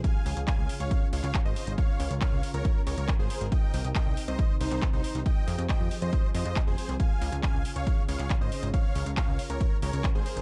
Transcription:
Already playing: G#4
0.04 C#3 C#4 F4 F5 G#5, kick, closed hi-hat
0.26 C#2, open hi-hat
0.37 C#2, closed hi-hat
0.48 F5 G#5, kick, clap, closed hi-hat
0.58 C#2
0.69 open hi-hat
0.80 C#2 C#5 F5, closed hi-hat
0.91 kick, closed hi-hat
1.13 C#2 C#5 F5, open hi-hat
1.24 C#2, clap, closed hi-hat
1.35 kick, clap, closed hi-hat
1.45 G#1 C5 D#5
1.56 open hi-hat
1.67 G#1, closed hi-hat
1.78 C#3 A#4 C#5 F5, kick, closed hi-hat
2.00 C#2, open hi-hat
2.11 C#2, closed hi-hat
2.21 C#5 F5, kick, clap, closed hi-hat
2.32 C#2
2.43 open hi-hat
2.54 C#2 A#4 C#5, closed hi-hat
2.65 kick, closed hi-hat
2.87 C#2 A#4 C#5, open hi-hat
2.98 C#2, closed hi-hat
3.08 kick, clap, closed hi-hat
3.19 G#1 G#4 C5
3.30 open hi-hat
3.41 G#1, closed hi-hat
3.52 C3 C4 D#4 D#5 G5, kick, closed hi-hat
3.74 C2, open hi-hat
3.85 C2, closed hi-hat
3.95 D#5 G5, kick, clap, closed hi-hat
4.06 C2
4.17 open hi-hat
4.28 C2 C5 D#5, closed hi-hat
4.39 kick, closed hi-hat
4.61 C2 D#4 C5, open hi-hat
4.71 C2, clap, closed hi-hat
4.82 kick, clap, closed hi-hat
4.93 C2 D#4 C5
5.04 open hi-hat
5.15 C2, closed hi-hat
5.26 F3 G4 G#4 D#5 G5, kick, closed hi-hat
5.48 F2, open hi-hat
5.59 F2, closed hi-hat
5.69 D#5 G5, kick, clap, closed hi-hat
5.80 F2
5.91 open hi-hat
6.02 F2 C5 D#5, closed hi-hat
6.13 kick, closed hi-hat
6.35 F2 C5 D#5, open hi-hat
6.45 F2, closed hi-hat
6.56 kick, clap, closed hi-hat
6.67 F1 G#4 C5
6.78 open hi-hat
6.89 C2, closed hi-hat
7.00 C#3 C#4 F4 F5 G#5, kick, closed hi-hat
7.22 C#2, open hi-hat
7.32 C#2, closed hi-hat
7.43 F5 G#5, kick, clap, closed hi-hat
7.54 C#2
7.65 open hi-hat
7.76 C#2 C#5 F5, closed hi-hat
7.87 kick, closed hi-hat
8.08 C#2 C#5 F5, open hi-hat
8.19 C#2, clap, closed hi-hat
8.30 kick, clap, closed hi-hat
8.41 G#1 C5 D#5
8.52 open hi-hat
8.63 G#1, closed hi-hat
8.74 A#4 C#5 F5, kick, closed hi-hat
8.95 C#2, open hi-hat
9.06 C#2, closed hi-hat
9.17 C#5 F5, kick, clap, closed hi-hat
9.28 C#2
9.39 open hi-hat
9.50 C#2 A#4 C#5, closed hi-hat
9.61 kick, closed hi-hat
9.82 C#2 A#4 C#5, open hi-hat
9.93 C#2, closed hi-hat
10.04 kick, clap, closed hi-hat
10.15 G#1 G#4 C5
10.26 open hi-hat
10.37 G#1, closed hi-hat

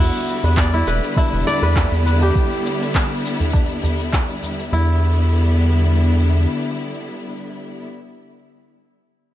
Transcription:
Already playing: E2 D3 G3 B3 E4 F#4 D5
0.00 E4
0.14 cabasa
0.28 cabasa
0.44 E2 B4, tabla na, tabla tin, cabasa
0.57 D5, kick, clap, cabasa
0.74 E4, cabasa
0.87 E1 B4, cabasa
1.04 cabasa
1.17 E4, kick, tabla na, cabasa
1.33 E1, tabla ge, cabasa
1.47 D5, tabla na, cabasa
1.62 E2 B4, cabasa
1.76 kick, clap, tabla na, cabasa
1.92 E2, cabasa
2.06 B4, cabasa
2.21 G4, tabla na, tabla ge, cabasa
2.36 kick, cabasa
2.52 cabasa
2.66 cabasa
2.81 tabla na, tabla tin, cabasa
2.95 kick, clap, cabasa
3.12 cabasa
3.26 cabasa
3.40 tabla ge, cabasa
3.53 kick, tabla na, cabasa
3.71 cabasa
3.83 tabla na, tabla tin, tabla ge, cabasa
4.00 cabasa
4.13 kick, clap, cabasa
4.29 tabla tin, cabasa
4.42 tabla na, tabla ge, cabasa
4.59 cabasa
4.72 E2 D3 G3 B3 E4

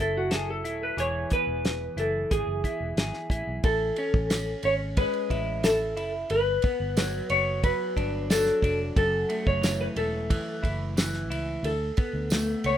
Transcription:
Already playing: F#1 F#3 C#4 E4 A4
0.01 A4
0.17 F#4
0.31 G#4 A4, snare, closed hi-hat
0.50 A4
0.64 D#1 E4, closed hi-hat
0.83 B4
0.97 E1 E3 G#4 C#5, closed hi-hat
1.30 B3 B4, kick, closed hi-hat
1.47 E1
1.65 snare, closed hi-hat
1.96 F#1 E4 A4, closed hi-hat
2.31 G#1 G#4, kick, closed hi-hat
2.47 F#1
2.64 E4, kick, closed hi-hat
2.80 E1
2.97 G#1 G#4, snare, closed hi-hat
3.14 snare
3.30 A1 E4, kick, closed hi-hat
3.47 B1
3.64 A1 A4, kick, ride
3.96 C#4, ride
4.14 A1, kick
4.30 snare, ride, tambourine
4.63 G#1 C#4 C#5, ride
4.97 G#3 B4, kick, ride
5.13 ride
5.30 A1 E4, kick, ride
5.63 A4, snare, ride, tambourine
5.97 F#1 E4, ride
6.30 G1 B4, ride
6.62 B3, kick, ride
6.80 G1
6.97 F#3, snare, ride, tambourine
7.29 F#1 B3 C#5, ride
7.63 F#3 B4, kick, ride
7.96 G1 D4, kick, ride
8.30 F#3 A4, snare, ride, tambourine
8.46 snare
8.62 F1 D4, kick, ride
8.96 F#1 F#2 A4, kick, ride
9.29 A3, ride
9.47 F#1 C#5, kick
9.62 E3, snare, ride, tambourine
9.81 B4
9.96 E1 A3 A4, ride
10.30 E3, kick, ride
10.63 F#1 E4, kick, ride
10.97 E3, snare, ride, tambourine
11.14 snare
11.30 C#2 E4, ride
11.63 D2 A4, ride
11.97 B3, kick, ride
12.13 D2
12.30 A3, snare, ride, tambourine
12.64 C#2 B3 C#5, ride

